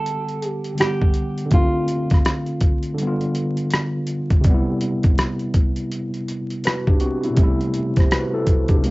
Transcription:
Already playing: tine electric piano D3 G3 B3 F#5, nylon-string guitar A4
0.06 closed hi-hat
0.29 closed hi-hat
0.42 closed hi-hat
0.49 nylon-string guitar G4
0.64 closed hi-hat
0.74 tine electric piano D3 G3, closed hi-hat
0.79 tine electric piano B3 F#5, nylon-string guitar G4, cross-stick
1.02 kick
1.14 closed hi-hat
1.38 closed hi-hat
1.45 tine electric piano D3
1.50 tine electric piano A3, nylon-string guitar F4, kick, closed hi-hat
1.54 tine electric piano C4
1.58 tine electric piano F4
1.88 closed hi-hat
2.10 kick, closed hi-hat
2.14 cross-stick
2.25 cross-stick, closed hi-hat
2.46 closed hi-hat
2.61 kick, closed hi-hat
2.83 closed hi-hat
2.94 tine electric piano D3
2.98 tine electric piano G3, closed hi-hat
3.03 tine electric piano B3
3.07 tine electric piano F4
3.21 closed hi-hat
3.35 closed hi-hat
3.57 closed hi-hat
3.70 cross-stick, closed hi-hat
4.07 closed hi-hat
4.30 kick, closed hi-hat
4.41 tine electric piano C3, kick, closed hi-hat
4.45 tine electric piano G3
4.50 tine electric piano B3
4.54 tine electric piano E4
4.81 closed hi-hat
5.03 kick, closed hi-hat
5.18 cross-stick, closed hi-hat
5.39 closed hi-hat
5.54 kick, closed hi-hat
5.76 closed hi-hat
5.91 closed hi-hat
6.14 closed hi-hat
6.28 closed hi-hat
6.50 closed hi-hat
6.64 tine electric piano F#4 B4, cross-stick, closed hi-hat
6.87 tine electric piano D4 G4, kick
7.00 tine electric piano C4 F#4, closed hi-hat
7.24 tine electric piano B3 E4, closed hi-hat
7.30 tine electric piano B2
7.34 tine electric piano C3 G3, kick, closed hi-hat
7.39 tine electric piano A3
7.43 tine electric piano E4
7.61 closed hi-hat
7.74 closed hi-hat
7.96 tine electric piano G4 C5, kick, closed hi-hat
8.00 cross-stick
8.11 tine electric piano F#4 B4, cross-stick, closed hi-hat
8.34 tine electric piano E4 A4
8.47 kick, closed hi-hat
8.68 tine electric piano D4 G4, kick, closed hi-hat
8.78 tine electric piano C3
8.82 tine electric piano G#3, closed hi-hat
8.86 tine electric piano A#3

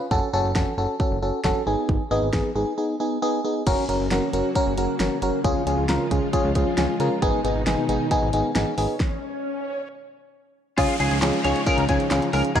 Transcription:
0.11 analog synth bass F#1, fm electric piano C#4 F#4 A4, kick
0.33 analog synth bass F#1, fm electric piano C#4 F#4 A4
0.44 analog synth bass F#1
0.55 analog synth bass F#1, fm electric piano C#4 F#4 A4, kick, snare
0.78 analog synth bass F#1, fm electric piano C#4 F#4 A4
1.00 fm electric piano C#4 F#4 A4, kick
1.11 analog synth bass F#1
1.22 analog synth bass F#1, fm electric piano C#4 F#4 A4
1.44 analog synth bass F#1, fm electric piano C#4 F#4 A4, kick, snare
1.67 analog synth bass G#1, fm electric piano B3 D#4 G#4
1.89 analog synth bass G#1, kick
2.11 analog synth bass G#1, fm electric piano B3 D#4 G#4
2.22 analog synth bass G#1
2.33 analog synth bass G#1, fm electric piano B3 D#4 G#4, kick, snare
2.55 analog synth bass G#1, fm electric piano B3 D#4 G#4
2.78 fm electric piano B3 D#4 G#4
3.00 fm electric piano B3 D#4 G#4
3.22 fm electric piano B3 D#4 G#4
3.45 fm electric piano B3 D#4 G#4
3.67 analog synth bass F#1, string machine C#3 F#3 A#3 F#4, fm electric piano C#4 F#4 A#4, kick, closed hi-hat, crash
3.89 analog synth bass F#1, fm electric piano C#4 F#4 A#4, closed hi-hat
4.00 analog synth bass F#1
4.11 analog synth bass F#1, fm electric piano C#4 F#4 A#4, snare, closed hi-hat
4.33 analog synth bass F#1, fm electric piano C#4 F#4 A#4, closed hi-hat
4.55 fm electric piano C#4 F#4 A#4, kick, closed hi-hat
4.67 analog synth bass F#1
4.78 analog synth bass F#1, fm electric piano C#4 F#4 A#4, closed hi-hat
5.00 analog synth bass F#1, fm electric piano C#4 F#4 A#4, snare, closed hi-hat
5.22 analog synth bass F#1, fm electric piano C#4 F#4 A#4, closed hi-hat
5.44 analog synth bass C#2, string machine F3 G#3 F4, fm electric piano C#4 F4 G#4, kick, closed hi-hat
5.67 analog synth bass C#2, fm electric piano C#4 F4 G#4, closed hi-hat
5.78 analog synth bass C#2
5.89 analog synth bass C#2, fm electric piano C#4 F4 A#4, snare, closed hi-hat
6.11 analog synth bass C#2, fm electric piano C#4 F4 G#4, kick, closed hi-hat
6.33 fm electric piano C#4 F4 G#4, kick, closed hi-hat
6.44 analog synth bass C#2
6.55 analog synth bass C#2, fm electric piano C#4 F4 G#4, kick, closed hi-hat
6.78 analog synth bass C#2, fm electric piano C#4 F4 G#4, snare, closed hi-hat
7.00 analog synth bass C#3, fm electric piano C#4 F4 A#4, closed hi-hat
7.22 analog synth bass G#1, string machine B2 D#3 D#4, fm electric piano B3 D#4 G#4, kick, closed hi-hat, swell
7.44 analog synth bass G#1, fm electric piano B3 D#4 G#4, closed hi-hat
7.56 analog synth bass G#1
7.67 analog synth bass G#1, fm electric piano B3 D#4 G#4, snare, closed hi-hat
7.89 analog synth bass G#1, fm electric piano B3 D#4 G#4, closed hi-hat
8.11 fm electric piano B3 D#4 G#4, kick, closed hi-hat
8.22 analog synth bass G#1
8.33 analog synth bass G#1, fm electric piano B3 D#4 G#4, closed hi-hat
8.55 analog synth bass G#1, fm electric piano B3 D#4 G#4, snare, closed hi-hat
8.78 analog synth bass G#1, fm electric piano B3 D#4 G#4, open hi-hat
9.00 kick, snare
10.78 analog synth bass C#2, string machine C#3 F3 G#3 D#4, fm electric piano C#4 F4 G#4, clean electric guitar F4, kick, closed hi-hat, downlifter
10.89 closed hi-hat
11.00 analog synth bass C#2, fm electric piano C#4 F4 G#4, clean electric guitar G#4, closed hi-hat
11.11 analog synth bass C#2, closed hi-hat
11.22 analog synth bass C#2, fm electric piano C#4 F4 G#4, snare, clap, closed hi-hat
11.33 closed hi-hat
11.44 analog synth bass C#2, fm electric piano C#4 F4 G#4, clean electric guitar C#5, closed hi-hat
11.56 closed hi-hat
11.67 fm electric piano C#4 F4 G#4, clean electric guitar A#4, kick, closed hi-hat
11.78 analog synth bass C#2, closed hi-hat
11.89 analog synth bass C#2, fm electric piano C#4 F4 G#4, clean electric guitar G#4, kick, closed hi-hat
12.00 closed hi-hat
12.11 analog synth bass C#2, fm electric piano C#4 F4 G#4, snare, clap, closed hi-hat
12.22 closed hi-hat
12.33 analog synth bass C#2, fm electric piano C#4 F4 G#4, clean electric guitar A#4, open hi-hat
12.45 closed hi-hat
12.55 analog synth bass D#2, string machine D#3 F#3 A#3 F#4, fm electric piano D#4 F#4 A#4, clean electric guitar G#4, kick, closed hi-hat

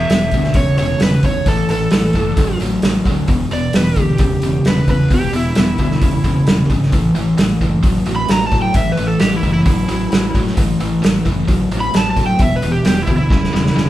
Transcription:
Already playing: electric slide guitar E5
0.10 fingered electric bass E1, distorted electric guitar E2 B2, snare, open hi-hat
0.31 fingered electric bass D2, distorted electric guitar E2 B2, kick, open hi-hat
0.44 snare
0.54 fingered electric bass E1, distorted electric guitar E2 C#3, electric slide guitar C#5, kick, open hi-hat
0.77 fingered electric bass E1, distorted electric guitar E2 C#3, electric slide guitar C#5, open hi-hat
1.00 fingered electric bass E1, distorted electric guitar E2 C#3, electric slide guitar B4, snare, open hi-hat
1.23 fingered electric bass E2, distorted electric guitar E2 C#3, electric slide guitar C#5, kick, open hi-hat
1.46 fingered electric bass A1, distorted electric guitar A2 E3, electric slide guitar A4, kick, open hi-hat
1.69 fingered electric bass A1, distorted electric guitar A2 E3, electric slide guitar A4, open hi-hat
1.91 fingered electric bass A1, distorted electric guitar A2 E3, snare, open hi-hat
2.13 fingered electric bass F#1, distorted electric guitar A2 E3, kick, open hi-hat
2.37 fingered electric bass A1, distorted electric guitar A2 F#3, kick, open hi-hat
2.60 fingered electric bass A1, distorted electric guitar A2 F#3, open hi-hat
2.82 fingered electric bass A1, distorted electric guitar A2 F#3, snare, open hi-hat
3.05 fingered electric bass D2, distorted electric guitar A2 F#3, kick, open hi-hat
3.28 fingered electric bass E1, distorted electric guitar E2 B2, kick, open hi-hat
3.51 fingered electric bass E1, distorted electric guitar E2 B2, electric slide guitar D5, open hi-hat
3.73 fingered electric bass E1, distorted electric guitar E2 B2, electric slide guitar B4, snare, open hi-hat
3.96 fingered electric bass D2, distorted electric guitar E2 B2, kick, open hi-hat
4.00 electric slide guitar G4
4.18 fingered electric bass E1, distorted electric guitar E2 C#3, kick, open hi-hat
4.42 fingered electric bass E1, distorted electric guitar E2 C#3, open hi-hat
4.65 fingered electric bass E1, distorted electric guitar E2 C#3, electric slide guitar B4, snare, open hi-hat
4.88 fingered electric bass E2, distorted electric guitar E2 C#3, electric slide guitar B4, kick, open hi-hat
5.10 fingered electric bass E1, distorted electric guitar E2 B2, electric slide guitar G4, kick, open hi-hat
5.33 fingered electric bass E1, distorted electric guitar E2 B2, electric slide guitar E4, open hi-hat
5.55 fingered electric bass E1, distorted electric guitar E2 B2, snare, open hi-hat
5.78 fingered electric bass D2, distorted electric guitar E2 B2, kick, open hi-hat
5.91 snare
6.02 fingered electric bass E1, distorted electric guitar E2 C#3, kick, open hi-hat
6.24 fingered electric bass E1, distorted electric guitar E2 C#3, kick, open hi-hat
6.47 fingered electric bass E1, distorted electric guitar E2 C#3, snare, open hi-hat
6.70 fingered electric bass G#1, distorted electric guitar E2 C#3, kick, open hi-hat
6.83 snare
6.92 fingered electric bass A1, distorted electric guitar A2 E3, kick, open hi-hat
7.15 fingered electric bass A1, distorted electric guitar A2 E3, open hi-hat
7.38 fingered electric bass A1, distorted electric guitar A2 E3, snare, open hi-hat
7.61 fingered electric bass F#1, distorted electric guitar A2 E3, kick, open hi-hat
7.83 fingered electric bass A1, distorted electric guitar A2 F#3, kick, open hi-hat
8.06 fingered electric bass A1, distorted electric guitar A2 F#3, open hi-hat
8.16 electric slide guitar B5
8.28 fingered electric bass A1, distorted electric guitar A2 F#3, electric slide guitar A#5, snare, open hi-hat
8.47 electric slide guitar A5
8.51 fingered electric bass A2, distorted electric guitar A2 F#3, kick, open hi-hat
8.62 electric slide guitar G5
8.74 fingered electric bass A1, distorted electric guitar A2 E3, electric slide guitar E5, kick, open hi-hat
8.92 electric slide guitar B4
8.97 fingered electric bass A1, distorted electric guitar A2 E3, open hi-hat
9.07 electric slide guitar A4
9.19 fingered electric bass A1, distorted electric guitar A2 E3, electric slide guitar G4, snare, open hi-hat
9.36 electric slide guitar E4
9.43 fingered electric bass F#1, distorted electric guitar A2 E3, kick, open hi-hat
9.53 electric slide guitar E4
9.66 fingered electric bass A1, distorted electric guitar A2 F#3, kick, open hi-hat
9.89 fingered electric bass A1, distorted electric guitar A2 F#3, open hi-hat
10.12 fingered electric bass A1, distorted electric guitar A2 F#3, snare, open hi-hat
10.35 fingered electric bass A2, distorted electric guitar A2 F#3, kick, open hi-hat
10.47 snare
10.57 fingered electric bass A1, distorted electric guitar A2 E3, kick, open hi-hat
10.80 fingered electric bass A1, distorted electric guitar A2 E3, open hi-hat
11.03 fingered electric bass A1, distorted electric guitar A2 E3, snare, open hi-hat
11.26 fingered electric bass F#1, distorted electric guitar A2 E3, kick, open hi-hat
11.48 fingered electric bass A1, distorted electric guitar A2 F#3, kick, open hi-hat
11.71 fingered electric bass A1, distorted electric guitar A2 F#3, open hi-hat
11.80 electric slide guitar B5
11.94 fingered electric bass A1, distorted electric guitar A2 F#3, electric slide guitar A5, snare, open hi-hat
12.11 electric slide guitar A5
12.16 fingered electric bass A2, distorted electric guitar A2 F#3, kick, open hi-hat
12.26 electric slide guitar G5
12.39 fingered electric bass E1, distorted electric guitar E2 B2, electric slide guitar E5, kick, open hi-hat
12.56 electric slide guitar B4
12.62 fingered electric bass E1, distorted electric guitar E2 B2, open hi-hat
12.72 electric slide guitar G4
12.85 fingered electric bass E1, distorted electric guitar E2 B2, electric slide guitar G4, snare, open hi-hat
13.02 electric slide guitar E4
13.07 fingered electric bass D2, distorted electric guitar E2 B2, kick, open hi-hat
13.16 electric slide guitar E4
13.30 fingered electric bass E1, distorted electric guitar E2 C#3, kick, snare
13.44 snare
13.53 fingered electric bass E1, distorted electric guitar E2 C#3, snare
13.66 snare
13.76 fingered electric bass E1, distorted electric guitar E2 C#3, snare

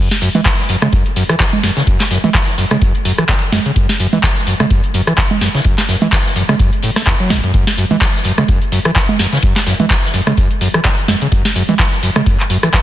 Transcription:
0.11 snare, closed hi-hat
0.21 acid bass F#2, closed hi-hat, open hi-hat
0.35 acid bass E3, closed hi-hat, low conga
0.45 acid bass E3, kick, snare, clap, closed hi-hat
0.59 snare, closed hi-hat
0.69 acid bass F#2, closed hi-hat, open hi-hat
0.82 acid bass C#3, cross-stick, closed hi-hat, low conga
0.93 acid bass F#2, kick, closed hi-hat
1.06 closed hi-hat
1.16 acid bass F#2, closed hi-hat, open hi-hat
1.29 acid bass E3, cross-stick, closed hi-hat
1.39 acid bass E3, kick, snare, clap, closed hi-hat
1.53 closed hi-hat, low conga
1.63 acid bass F#2, snare, closed hi-hat, open hi-hat
1.77 acid bass C#3, snare, closed hi-hat
1.87 acid bass F#2, kick, closed hi-hat
2.00 snare, clap, closed hi-hat
2.11 acid bass F#2, snare, closed hi-hat, open hi-hat
2.24 acid bass E3, closed hi-hat, low conga
2.34 acid bass E3, kick, snare, clap, closed hi-hat
2.47 snare, closed hi-hat
2.58 acid bass F#2, closed hi-hat, open hi-hat
2.71 acid bass C#3, cross-stick, closed hi-hat, low conga
2.81 acid bass F#2, kick, closed hi-hat
2.95 closed hi-hat
3.05 acid bass F#2, closed hi-hat, open hi-hat
3.18 acid bass E3, cross-stick, closed hi-hat
3.29 acid bass E3, kick, snare, clap, closed hi-hat
3.42 closed hi-hat
3.52 acid bass F#2, snare, closed hi-hat, open hi-hat, low conga
3.66 acid bass C#3, closed hi-hat
3.76 acid bass F#2, kick, closed hi-hat
3.89 snare, closed hi-hat
4.00 acid bass F#2, closed hi-hat, open hi-hat
4.13 acid bass E3, closed hi-hat, low conga
4.23 acid bass E3, kick, snare, clap, closed hi-hat
4.37 snare, closed hi-hat
4.47 acid bass F#2, closed hi-hat, open hi-hat
4.60 acid bass C#3, cross-stick, closed hi-hat, low conga
4.71 acid bass F#2, kick, closed hi-hat
4.84 closed hi-hat
4.94 acid bass F#2, closed hi-hat, open hi-hat
5.07 acid bass E3, cross-stick, closed hi-hat
5.18 kick, snare, clap, closed hi-hat
5.31 closed hi-hat, low conga
5.41 acid bass F#2, snare, closed hi-hat, open hi-hat
5.55 acid bass C#3, snare, closed hi-hat
5.64 acid bass F#2, kick, closed hi-hat
5.78 snare, clap, closed hi-hat
5.88 acid bass F#2, snare, closed hi-hat, open hi-hat
6.02 acid bass E3, closed hi-hat, low conga
6.12 acid bass E3, kick, snare, clap, closed hi-hat
6.25 snare, closed hi-hat
6.36 acid bass F#2, closed hi-hat, open hi-hat
6.49 acid bass C#3, cross-stick, closed hi-hat, low conga
6.59 acid bass F#2, kick, closed hi-hat
6.73 closed hi-hat
6.82 acid bass A2, closed hi-hat, open hi-hat
6.96 acid bass A3, cross-stick, snare, closed hi-hat
7.07 acid bass E2, kick, snare, clap, closed hi-hat
7.19 acid bass F#3, closed hi-hat
7.30 acid bass F#1, snare, closed hi-hat, open hi-hat, low conga
7.44 acid bass F#2, closed hi-hat
7.54 acid bass F#2, kick, closed hi-hat
7.67 snare, closed hi-hat
7.78 acid bass F#2, closed hi-hat, open hi-hat
7.91 acid bass E3, closed hi-hat, low conga
8.01 acid bass E3, kick, snare, clap, closed hi-hat
8.14 snare, closed hi-hat
8.24 acid bass F#2, closed hi-hat, open hi-hat
8.38 acid bass C#3, cross-stick, closed hi-hat, low conga
8.48 acid bass F#2, kick, closed hi-hat
8.62 closed hi-hat
8.72 acid bass F#2, closed hi-hat, open hi-hat
8.85 acid bass E3, cross-stick, closed hi-hat
8.96 acid bass E3, kick, snare, clap, closed hi-hat
9.09 closed hi-hat, low conga
9.19 acid bass F#2, snare, closed hi-hat, open hi-hat
9.33 acid bass C#3, snare, closed hi-hat
9.42 acid bass F#2, kick, closed hi-hat
9.56 snare, clap, closed hi-hat
9.67 acid bass F#2, snare, closed hi-hat, open hi-hat
9.80 acid bass E3, closed hi-hat, low conga
9.90 acid bass E3, kick, snare, clap, closed hi-hat
10.03 snare, closed hi-hat
10.13 acid bass F#2, closed hi-hat, open hi-hat
10.27 acid bass C#3, cross-stick, closed hi-hat, low conga
10.37 acid bass F#2, kick, closed hi-hat
10.51 closed hi-hat
10.61 acid bass F#2, closed hi-hat, open hi-hat
10.74 acid bass E3, cross-stick, closed hi-hat
10.84 acid bass E3, kick, snare, clap, closed hi-hat
10.98 closed hi-hat
11.08 acid bass F#2, snare, closed hi-hat, open hi-hat, low conga
11.22 acid bass C#3, closed hi-hat
11.32 acid bass F#2, kick, closed hi-hat
11.45 snare, closed hi-hat
11.56 acid bass F#2, closed hi-hat, open hi-hat
11.69 acid bass E3, closed hi-hat, low conga
11.79 acid bass E3, kick, snare, clap, closed hi-hat
11.92 snare, closed hi-hat
12.03 acid bass F#2, closed hi-hat, open hi-hat
12.16 acid bass C#3, cross-stick, closed hi-hat, low conga
12.26 acid bass F#2, kick, closed hi-hat
12.40 clap, closed hi-hat
12.50 acid bass F#2, closed hi-hat, open hi-hat
12.63 acid bass E3, cross-stick, closed hi-hat
12.73 acid bass E3, kick, snare, clap, closed hi-hat

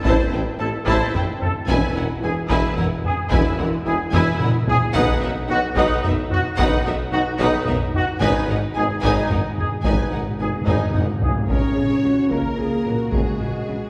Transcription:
0.04 tuba A1, double bass section A1, cello section A2, viola section E4, violin section C5 A5, taiko
0.32 double bass section A1, tuba A1, cello section A2, viola section E4, violin section B4 G5
0.58 double bass section A1, tuba A1, cello section A2, french horn section C4 E4, viola section E4, trumpet section A4, violin section C5 A5
0.86 double bass section A1, tuba A1, cello section A2, viola section E4, violin section C5 A5, taiko
1.13 double bass section A1, tuba A1, cello section A2, viola section E4, violin section B4 G5, taiko low-mid
1.39 french horn section C4 E4, trumpet section A4, taiko low-mid
1.66 double bass section E1, tuba E1, cello section E2, viola section E4, violin section B4 G#5, taiko
1.94 double bass section E1, tuba E1, cello section E2, viola section E4, violin section A#4 F#5
2.21 double bass section E1, tuba E1, cello section E2, french horn section B3 E4, viola section E4, trumpet section G#4, violin section B4 G#5
2.49 double bass section E1, tuba E1, cello section E2, viola section E4, violin section B4 G#5, taiko
2.76 double bass section E1, tuba E1, cello section E2, viola section E4, violin section A#4 F#5, taiko low-mid
3.03 french horn section B3 E4, trumpet section G#4, taiko low-mid
3.30 double bass section E1, tuba E1, cello section E2, viola section E4, violin section B4 G#5, taiko
3.58 double bass section E1, tuba E1, cello section E2, viola section E4, violin section A#4 F#5, taiko rim
3.85 tuba E1, double bass section E1, cello section E2, french horn section B3 E4, viola section E4, trumpet section G#4, violin section B4 G#5
4.12 double bass section E1, tuba E1, cello section E2, viola section E4, violin section G#5, taiko low-mid
4.16 violin section B4
4.39 double bass section E1, tuba E1, cello section E2, viola section E4, violin section A#4 F#5, taiko mid
4.67 french horn section B3 E4, trumpet section G#4, taiko low
4.93 double bass section B1, tuba B1, cello section B2, viola section D#4, violin section B4 F#5, taiko
5.20 double bass section B1, tuba B1, cello section B2, viola section D#4, violin section A#4 E5
5.48 double bass section B1, tuba B1, cello section B2, french horn section B3 D#4, viola section D#4, trumpet section F#4, violin section B4 F#5
5.75 double bass section B1, tuba B1, cello section B2, viola section D#4, violin section B4 F#5, taiko
6.03 double bass section B1, tuba B1, cello section B2, viola section D#4, violin section A#4 E5, taiko low-mid
6.30 french horn section B3 D#4, trumpet section F#4, taiko low-mid
6.57 double bass section B1, tuba B1, cello section B2, viola section D#4, violin section B4 F#5, taiko
6.85 double bass section B1, tuba B1, cello section B2, viola section D#4, violin section A#4 E5
7.11 double bass section B1, tuba B1, cello section B2, french horn section B3 D#4, viola section D#4, trumpet section F#4, violin section B4 F#5
7.39 double bass section B1, tuba B1, cello section B2, viola section D#4, violin section B4 F#5, taiko
7.66 tuba B1, double bass section B1, cello section B2, viola section D#4, violin section A#4 E5, taiko low-mid
7.94 french horn section B3 D#4, trumpet section F#4, taiko low-mid
8.20 double bass section G#1, tuba G#1, cello section G#2, timpani G#2, viola section D#4, violin section B4 G#5, taiko
8.37 timpani G#2
8.43 timpani G#2
8.48 tuba G#1, double bass section G#1, cello section G#2, timpani G#2, viola section D#4, violin section A#4 F#5
8.59 timpani G#2
8.73 tuba G#1, double bass section G#1, timpani G#2, cello section G#2, viola section D#4, trumpet section G#4, violin section B4 G#5
8.77 timpani G#2, french horn section B3 D#4
8.88 timpani G#2
8.96 timpani G#2
9.02 tuba G#1, double bass section G#1, cello section G#2, timpani G#2, viola section D#4, violin section B4 G#5, taiko
9.11 timpani G#2
9.18 timpani G#2
9.25 timpani G#2
9.30 tuba G#1, double bass section G#1, cello section G#2, viola section D#4, violin section A#4 F#5, taiko low-mid
9.34 timpani G#2
9.41 timpani G#2
9.49 timpani G#2
9.56 timpani G#2, french horn section B3 D#4, trumpet section G#4, taiko low-mid
9.64 timpani G#2
9.72 timpani G#2
9.80 tuba G#1, timpani G#2, violin section G#5
9.85 double bass section G#1, cello section G#2, timpani G#2, viola section D#4, violin section B4, taiko
9.95 timpani G#2
10.02 timpani G#2
10.09 tuba G#1, double bass section G#1, timpani G#2, cello section G#2, viola section D#4, violin section A#4 F#5
10.16 timpani G#2
10.23 timpani G#2
10.30 timpani G#2
10.37 tuba G#1, double bass section G#1, timpani G#2, cello section G#2, french horn section B3 D#4, viola section D#4, trumpet section G#4, violin section B4 G#5
10.46 timpani G#2
10.52 timpani G#2
10.61 timpani G#2
10.66 tuba G#1, double bass section G#1, cello section G#2, timpani G#2, viola section D#4, violin section B4 G#5, taiko low-mid
10.75 timpani G#2
10.83 timpani G#2
10.90 tuba G#1, timpani G#2, viola section D#4
10.94 double bass section G#1, cello section G#2, timpani G#2, violin section A#4 F#5, taiko low-mid
11.05 timpani G#2
11.14 timpani G#2
11.21 timpani G#2, french horn section B3 D#4, trumpet section G#4, taiko low
11.29 timpani G#2
11.36 timpani G#2
11.49 tuba C#2, double bass section C#2, cello section C#3, french horn section C#4, viola section A#4, violin section C#5, taiko
11.76 tuba C#2, double bass section C#2, cello section C#3, viola section G#4, taiko mid
12.03 tuba C#2, double bass section C#2, cello section C#3, viola section F#4
12.29 tuba C#2, double bass section C#2, cello section C#3, french horn section A#3, violin section A#4, viola section A#4, taiko
12.57 tuba C#2, double bass section C#2, cello section C#3, viola section G#4
12.85 tuba C#2, double bass section C#2, cello section C#3, viola section F#4, taiko mid
13.11 tuba C#2, double bass section C#2, cello section C#3, french horn section G#3, violin section G#4, taiko
13.39 tuba C#2, double bass section C#2, cello section C#3, taiko mid
13.66 tuba C#2, double bass section C#2, cello section C#3

